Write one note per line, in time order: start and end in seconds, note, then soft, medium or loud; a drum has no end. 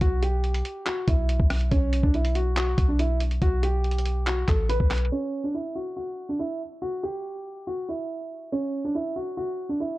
0.01 0.63 B1 loud
0.01 0.21 F#4 loud
0.01 kick loud
0.01 closed hi-hat medium
0.22 0.83 G4 medium
0.22 closed hi-hat medium
0.44 closed hi-hat soft
0.54 closed hi-hat medium
0.65 closed hi-hat medium
0.86 1.06 F#4 medium
0.86 clap loud
0.86 closed hi-hat medium
1.08 1.38 B1 loud
1.08 1.68 E4 medium
1.08 kick medium
1.08 closed hi-hat medium
1.29 closed hi-hat medium
1.40 1.70 B1 loud
1.40 kick loud
1.50 cross-stick loud
1.50 closed hi-hat medium
1.50 open hi-hat medium
1.61 closed hi-hat soft
1.71 2.02 B1 loud
1.71 2.02 C#4 loud
1.71 kick loud
1.71 closed hi-hat medium
1.93 closed hi-hat medium
2.03 2.75 B1 loud
2.03 2.14 D4 medium
2.03 kick medium
2.14 2.34 E4 medium
2.14 closed hi-hat soft
2.25 closed hi-hat medium
2.35 2.55 F#4 medium
2.35 closed hi-hat medium
2.56 2.87 F#4 medium
2.56 clap loud
2.56 closed hi-hat medium
2.78 3.39 B1 loud
2.78 kick medium
2.78 closed hi-hat medium
2.88 2.99 D4 medium
2.99 3.19 E4 medium
2.99 closed hi-hat medium
3.20 closed hi-hat medium
3.31 closed hi-hat soft
3.42 4.44 B1 loud
3.42 3.62 F#4 loud
3.42 kick loud
3.42 closed hi-hat medium
3.63 4.23 G4 medium
3.63 closed hi-hat medium
3.84 closed hi-hat soft
3.91 closed hi-hat medium
3.98 closed hi-hat medium
4.06 closed hi-hat medium
4.27 4.47 F#4 medium
4.27 clap loud
4.27 closed hi-hat medium
4.48 4.79 A1 loud
4.48 4.68 A4 medium
4.48 kick loud
4.48 clap medium
4.48 closed hi-hat medium
4.69 5.09 B4 medium
4.69 closed hi-hat medium
4.80 5.11 B1 loud
4.80 kick loud
4.91 cross-stick loud
4.91 clap loud
4.91 closed hi-hat medium
4.91 open hi-hat medium
4.98 closed hi-hat medium
5.05 closed hi-hat medium
5.12 5.42 C#4 loud
5.44 5.54 D4 medium
5.54 5.75 E4 medium
5.75 5.95 F#4 medium
5.97 6.27 F#4 medium
6.29 6.39 D4 medium
6.39 6.60 E4 medium
6.82 7.02 F#4 medium
7.03 7.63 G4 medium
7.67 7.87 F#4 medium
7.89 8.49 E4 medium
8.52 8.82 C#4 medium
8.85 8.94 D4 medium
8.95 9.15 E4 medium
9.16 9.36 F#4 medium
9.37 9.67 F#4 medium
9.69 9.79 D4 medium
9.80 9.98 E4 medium